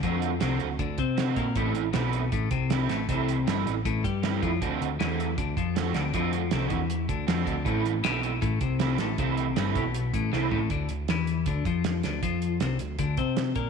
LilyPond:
<<
  \new Staff \with { instrumentName = "Overdriven electric guitar" } { \time 4/4 \key a \minor \tempo 4 = 157 <d a c' fis'>8 r8 <d a c' fis'>8 r4. <d a c' fis'>8 r8 | <e a c' e'>8 r8 <e a c' e'>8 r4. <e a c' e'>8 r8 | <e a c' e'>8 r8 <e a c' e'>8 r4. <e a c' e'>8 r8 | <d a c' fis'>8 r8 <d a c' fis'>8 r4. <d a c' fis'>8 r8 |
<d a c' fis'>8 r8 <d a c' fis'>8 r4. <d a c' fis'>8 r8 | <e a c' e'>8 r8 <e a c' e'>8 r4. <e a c' e'>8 r8 | <e a c' e'>8 r8 <e a c' e'>8 r4. <e a c' e'>8 r8 | r1 |
r1 | }
  \new Staff \with { instrumentName = "Clean electric guitar" } { \clef bass \time 4/4 \key a \minor f4 c8 d8 d8 c'4 bes8 | a,8 a,8 b,4 a,8 c4 a,8 | c4 g,8 a,8 a,8 g4 f8 | d8 d8 e4 d8 f4 d8 |
f4 c8 e4 d8 f8 d8 | a,8 a,8 b,4 a,8 c4 a,8 | c4 g,8 b,4 a,8 c8 a,8 | d8 d8 e4 d8 f4 d8 |
f4 c8 d8 d8 c'4 bes8 | }
  \new Staff \with { instrumentName = "Picked electric bass" } { \clef bass \time 4/4 \key a \minor f,4 c,8 d,8 d,8 c4 bes,8 | a,,8 a,,8 b,,4 a,,8 c,4 a,,8 | c,4 g,,8 a,,8 a,,8 g,4 f,8 | d,8 d,8 e,4 d,8 f,4 d,8 |
f,4 c,8 e,4 d,8 f,8 d,8 | a,,8 a,,8 b,,4 a,,8 c,4 a,,8 | c,4 g,,8 b,,4 a,,8 c,8 a,,8 | d,8 d,8 e,4 d,8 f,4 d,8 |
f,4 c,8 d,8 d,8 c4 bes,8 | }
  \new DrumStaff \with { instrumentName = "Drums" } \drummode { \time 4/4 <hh bd>8 hh8 <hh sn>8 hh8 <hh bd>8 <hh bd>8 <hh sn>8 <hh bd>8 | <hh bd>8 hh8 <hh sn>8 hh8 <hh bd>8 <hh bd>8 <hh sn>8 <hh sn>8 | <hh bd>8 hh8 <hh sn>8 hh8 <hh bd>8 <hh bd>8 <hh sn>8 <hh bd>8 | <hh bd>8 hh8 <hh sn>8 hh8 <hh bd>8 <hh bd>8 <hh sn>8 <hh sn>8 |
<hh bd>8 hh8 <hh sn>8 <hh bd>8 hh8 <hh bd>8 <hh sn>8 <hh bd>8 | <hh bd>8 hh8 <hh sn>8 hh8 <hh bd>8 <hh bd>8 <hh sn>8 <hh sn>8 | <hh bd>8 hh8 <hh sn>8 <hh bd>8 hh8 <hh bd>8 sn8 tomfh8 | <hh bd>8 hh8 <hh sn>8 hh8 <hh bd>8 <hh bd>8 <hh sn>8 <hh sn>8 |
<hh bd>8 hh8 <hh sn>8 hh8 <hh bd>8 <hh bd>8 <hh sn>8 <hh bd>8 | }
>>